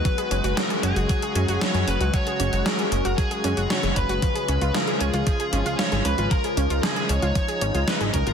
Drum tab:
HH |xxxxxxxxxxxxxxxx|xxxxxxxxxxxxxxxx|xxxxxxxxxxxxxxxx|xxxxxxxxxxxxxxxx|
SD |----o-------o---|----o-------o---|----o-------o---|----o-------o---|
BD |o-------o-------|o-------o-----o-|o-------o-------|o-------o-----o-|